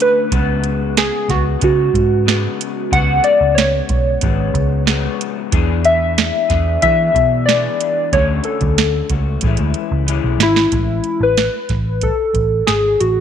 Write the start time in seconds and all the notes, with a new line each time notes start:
Already playing: D3 A3 C#4 F#4
0.00 B4, closed hi-hat
0.31 C#2 C#3 G#3 B3 F#4, kick, closed hi-hat
0.64 closed hi-hat
0.97 G#4, snare, closed hi-hat
1.28 C#2 G#3 B3 F#4, kick, snare, closed hi-hat
1.60 C#3 G#3 B3 F#4, kick, closed hi-hat
1.64 F#4
1.94 G#2, kick, closed hi-hat
2.26 C#3 G#3 B3 F#4, snare, closed hi-hat
2.61 closed hi-hat
2.91 C#2 C#3 G#3 B3 F#5, kick, closed hi-hat
2.96 F#4
3.24 D5, closed hi-hat
3.41 C#2
3.55 C#5, snare, closed hi-hat
3.89 B1, kick, closed hi-hat
4.21 G#1 C#3 G#3 B3 F#4, kick, closed hi-hat
4.54 C#2, kick, closed hi-hat
4.86 C#3 G#3 B3 F#4, snare, closed hi-hat
5.21 closed hi-hat
5.52 E2 E3 B3 D4 G#4, kick, closed hi-hat
5.85 E5, closed hi-hat
6.18 snare, closed hi-hat
6.49 E2 B3 D4 G#4, kick, snare, closed hi-hat
6.81 E3 B3 D4 G#4 E5, kick, closed hi-hat
7.14 B2, kick, closed hi-hat
7.46 E3 B3 D4 D5, snare, closed hi-hat
7.50 G#4
7.80 closed hi-hat
8.13 D2 D3 A3 C#4 F#4 C#5, kick, closed hi-hat
8.44 A4, closed hi-hat
8.61 D2, kick, closed hi-hat
8.78 snare, closed hi-hat
9.09 C#2 A3 C#4 F#4, kick, closed hi-hat
9.41 A1 E3 G#3 C#4, kick, closed hi-hat
9.46 E4
9.57 D2, closed hi-hat
9.74 closed hi-hat
9.92 C#2
10.06 E3 G#3 C#4 E4, closed hi-hat
10.24 B1
10.39 G#1, snare, closed hi-hat
10.43 E4
10.56 snare
10.72 A1, kick, closed hi-hat
11.04 closed hi-hat
11.20 A1 B4
11.37 snare, closed hi-hat
11.69 A1, kick, snare, closed hi-hat
12.01 A4, kick, closed hi-hat
12.34 A1, kick, closed hi-hat
12.67 G#1 G#4, snare, closed hi-hat
13.00 A1 F#4, closed hi-hat